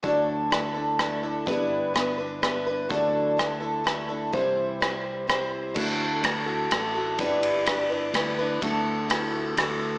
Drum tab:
CC |------|------|------|------|
RD |------|------|------|------|
SD |--r-r-|--r-r-|--r-r-|--r-r-|
BD |o-----|o-----|o-----|o-----|

CC |x-----|------|------|
RD |--x-x-|xxx-x-|x-x-x-|
SD |--r-r-|--r-r-|--r-r-|
BD |o-----|o-----|o-----|